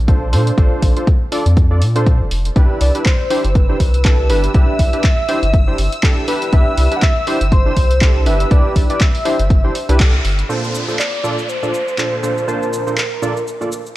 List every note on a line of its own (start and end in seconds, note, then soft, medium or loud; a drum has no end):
0.00 0.34 A#1 medium
0.08 0.30 D4 medium
0.08 0.30 F4 medium
0.08 0.30 A4 medium
0.08 0.30 C5 medium
0.08 kick loud
0.08 closed hi-hat soft
0.33 0.51 A#2 loud
0.33 0.55 D4 medium
0.33 0.55 F4 medium
0.33 0.55 A4 medium
0.33 0.55 C5 medium
0.33 open hi-hat loud
0.47 closed hi-hat medium
0.58 0.68 A#1 loud
0.58 0.93 D4 medium
0.58 0.93 F4 medium
0.58 0.93 A4 medium
0.58 0.93 C5 loud
0.58 kick loud
0.58 closed hi-hat soft
0.83 0.92 A#1 loud
0.83 kick medium
0.83 open hi-hat loud
0.96 1.06 D4 medium
0.96 1.06 F4 medium
0.96 1.06 A4 medium
0.96 1.06 C5 medium
0.96 closed hi-hat medium
1.07 kick loud
1.07 closed hi-hat soft
1.32 1.44 D4 medium
1.32 1.44 F4 medium
1.32 1.44 A4 medium
1.32 1.44 D5 loud
1.32 open hi-hat loud
1.46 1.83 F2 loud
1.46 closed hi-hat medium
1.57 kick loud
1.57 closed hi-hat soft
1.71 1.80 D4 medium
1.71 1.80 F4 medium
1.71 1.80 A4 medium
1.71 1.80 D5 medium
1.82 2.22 A#2 medium
1.82 open hi-hat loud
1.96 2.05 D4 medium
1.96 2.05 F4 medium
1.96 2.05 A4 medium
1.96 2.05 C5 loud
1.96 closed hi-hat medium
2.06 2.18 D4 medium
2.06 2.18 F4 medium
2.06 2.19 C5 medium
2.06 kick loud
2.06 closed hi-hat soft
2.21 2.28 F1 medium
2.31 2.50 F1 medium
2.31 open hi-hat loud
2.45 closed hi-hat medium
2.56 2.66 C2 loud
2.56 2.91 D4 medium
2.56 2.92 E4 medium
2.56 2.92 G4 medium
2.56 2.92 B4 loud
2.56 10.50 E6 medium
2.56 kick loud
2.56 closed hi-hat soft
2.81 2.91 C2 medium
2.81 2.92 D5 medium
2.81 open hi-hat loud
2.95 3.04 D4 medium
2.95 3.04 E4 medium
2.95 3.04 G4 medium
2.95 3.04 B4 medium
2.95 closed hi-hat medium
3.06 3.57 C5 medium
3.06 kick loud
3.06 clap loud
3.06 closed hi-hat soft
3.30 3.42 D4 medium
3.30 3.42 E4 medium
3.30 3.42 G4 medium
3.30 3.42 C5 loud
3.30 open hi-hat loud
3.44 3.75 G1 loud
3.44 closed hi-hat medium
3.55 4.29 B4 medium
3.55 kick loud
3.55 closed hi-hat soft
3.69 3.78 D4 medium
3.69 3.78 E4 medium
3.69 3.78 G4 medium
3.69 3.78 C5 medium
3.80 4.31 C2 medium
3.80 kick medium
3.80 open hi-hat loud
3.94 closed hi-hat medium
4.05 4.27 D4 medium
4.05 4.27 E4 medium
4.05 4.27 G4 medium
4.05 4.27 A4 medium
4.05 kick loud
4.05 clap loud
4.05 closed hi-hat soft
4.29 4.48 G1 medium
4.29 4.52 D4 medium
4.29 4.52 E4 medium
4.29 4.52 G4 medium
4.29 4.53 B4 medium
4.29 4.52 B4 medium
4.29 open hi-hat loud
4.44 closed hi-hat medium
4.54 4.64 C2 loud
4.54 4.90 D4 medium
4.54 4.90 E4 medium
4.54 4.90 G4 medium
4.54 4.90 B4 loud
4.54 6.24 E5 loud
4.54 kick loud
4.54 closed hi-hat medium
4.79 4.89 C2 medium
4.79 kick medium
4.79 open hi-hat loud
4.93 5.02 D4 medium
4.93 5.02 E4 medium
4.93 5.02 G4 medium
4.93 5.02 B4 medium
4.93 closed hi-hat medium
5.04 kick loud
5.04 clap loud
5.04 closed hi-hat soft
5.29 5.41 D4 medium
5.29 5.41 E4 medium
5.29 5.41 G4 medium
5.29 5.41 C5 loud
5.29 open hi-hat loud
5.43 5.73 G1 loud
5.43 closed hi-hat medium
5.54 kick loud
5.54 closed hi-hat soft
5.67 5.77 D4 medium
5.67 5.77 E4 medium
5.67 5.77 G4 medium
5.67 5.77 C5 medium
5.78 5.88 G1 medium
5.78 open hi-hat loud
5.92 closed hi-hat medium
6.03 6.25 D4 medium
6.03 6.25 E4 medium
6.03 6.25 G4 medium
6.03 6.26 A4 medium
6.03 kick loud
6.03 clap loud
6.03 closed hi-hat medium
6.28 6.50 D4 medium
6.28 6.50 E4 medium
6.28 6.50 G4 medium
6.28 6.50 B4 medium
6.28 open hi-hat loud
6.42 closed hi-hat medium
6.53 6.63 C2 loud
6.53 6.88 D4 medium
6.53 6.88 E4 medium
6.53 6.88 G4 medium
6.53 6.88 B4 loud
6.53 6.93 E5 loud
6.53 kick loud
6.53 closed hi-hat medium
6.77 6.87 C2 loud
6.77 open hi-hat loud
6.91 7.01 D4 medium
6.91 7.01 E4 medium
6.91 7.01 G4 medium
6.91 7.01 B4 medium
6.91 closed hi-hat medium
6.97 7.04 F#5 medium
7.02 7.52 E5 loud
7.02 kick loud
7.02 clap loud
7.02 closed hi-hat medium
7.27 7.39 D4 medium
7.27 7.39 E4 medium
7.27 7.39 G4 medium
7.27 7.39 C5 loud
7.27 open hi-hat loud
7.41 7.72 G1 loud
7.41 closed hi-hat medium
7.52 8.22 C5 loud
7.52 kick loud
7.52 closed hi-hat medium
7.66 7.75 D4 medium
7.66 7.75 E4 medium
7.66 7.75 G4 medium
7.66 7.75 C5 medium
7.77 8.28 C2 medium
7.77 kick medium
7.77 open hi-hat loud
7.91 closed hi-hat medium
8.01 8.24 D4 medium
8.01 8.24 E4 medium
8.01 8.24 G4 medium
8.01 8.24 A4 medium
8.01 kick loud
8.01 clap loud
8.01 closed hi-hat medium
8.26 8.45 G1 medium
8.26 8.48 D4 medium
8.26 8.49 E4 medium
8.26 8.49 G4 medium
8.26 8.49 B4 medium
8.26 8.53 E5 loud
8.26 open hi-hat loud
8.40 closed hi-hat medium
8.51 8.61 C2 loud
8.51 8.86 D4 medium
8.51 8.87 E4 medium
8.51 8.87 G4 medium
8.51 8.87 B4 loud
8.51 8.90 D5 loud
8.51 kick loud
8.51 closed hi-hat medium
8.76 8.86 C2 loud
8.76 kick medium
8.76 open hi-hat loud
8.90 8.99 D4 medium
8.90 8.99 E4 medium
8.90 8.99 G4 medium
8.90 8.99 B4 medium
8.90 9.00 D5 medium
8.90 closed hi-hat medium
9.01 10.21 E5 loud
9.01 kick loud
9.01 clap loud
9.01 closed hi-hat medium
9.15 open hi-hat medium
9.25 9.37 D4 medium
9.25 9.37 E4 medium
9.25 9.37 G4 medium
9.25 9.37 C5 loud
9.25 open hi-hat loud
9.40 9.70 G1 loud
9.40 closed hi-hat medium
9.50 kick loud
9.50 closed hi-hat medium
9.64 9.73 D4 medium
9.64 9.73 E4 medium
9.64 9.73 G4 medium
9.64 9.74 C5 medium
9.75 open hi-hat loud
9.89 10.20 C2 medium
9.89 9.98 D4 loud
9.89 9.98 E4 medium
9.89 9.98 G4 medium
9.89 9.98 B4 loud
9.89 closed hi-hat medium
10.00 10.12 D4 medium
10.00 10.12 E4 medium
10.00 10.12 G4 medium
10.00 10.12 A4 medium
10.00 kick loud
10.00 clap loud
10.00 closed hi-hat medium
10.25 10.43 G1 medium
10.25 open hi-hat loud
10.39 closed hi-hat medium
10.49 10.85 A#2 medium
10.49 10.85 D4 medium
10.49 10.85 F4 medium
10.49 10.85 A4 medium
10.49 10.85 C5 medium
10.49 downlifter medium
10.49 shaker soft
10.64 shaker soft
10.75 shaker medium
10.88 10.97 A#2 medium
10.88 10.97 D4 medium
10.88 10.97 F4 medium
10.88 10.97 A4 medium
10.88 10.98 C5 medium
10.88 shaker soft
10.99 11.50 D5 loud
10.99 clap loud
10.99 shaker soft
11.24 11.36 A#2 medium
11.24 11.36 D4 medium
11.24 11.36 F4 medium
11.24 11.36 A4 medium
11.24 11.36 D5 medium
11.24 shaker medium
11.38 shaker soft
11.49 12.49 C5 loud
11.49 shaker soft
11.63 11.72 A#2 medium
11.63 11.72 D4 medium
11.63 11.72 F4 medium
11.63 11.72 A4 medium
11.63 11.72 D5 medium
11.63 shaker soft
11.74 shaker medium
11.88 shaker soft
11.98 12.20 A#2 medium
11.98 12.20 D4 medium
11.98 12.20 F4 medium
11.98 12.20 A4 medium
11.98 12.21 C5 medium
11.98 clap loud
11.98 shaker soft
12.23 12.45 A#2 medium
12.23 12.45 D4 medium
12.23 12.45 F4 medium
12.23 12.45 A4 medium
12.23 12.45 C5 medium
12.23 shaker medium
12.38 shaker soft
12.48 12.83 A#2 medium
12.48 12.83 D4 medium
12.48 12.83 F4 medium
12.48 13.97 A#4 medium
12.48 12.83 C5 loud
12.48 12.83 A5 medium
12.48 shaker soft
12.63 shaker soft
12.73 shaker medium
12.86 12.96 A#2 medium
12.86 12.96 D4 medium
12.86 12.96 F4 medium
12.86 12.96 A4 medium
12.86 12.96 C5 medium
12.86 shaker soft
12.98 clap loud
12.98 shaker soft
13.22 13.34 A#2 medium
13.22 13.34 D4 medium
13.22 13.34 F4 medium
13.22 13.34 A4 medium
13.22 13.34 D5 loud
13.22 shaker medium
13.37 shaker soft
13.47 shaker soft
13.61 13.70 A#2 medium
13.61 13.70 D4 medium
13.61 13.70 F4 medium
13.61 13.70 A4 medium
13.61 13.70 D5 medium
13.61 shaker soft
13.72 shaker medium
13.86 shaker soft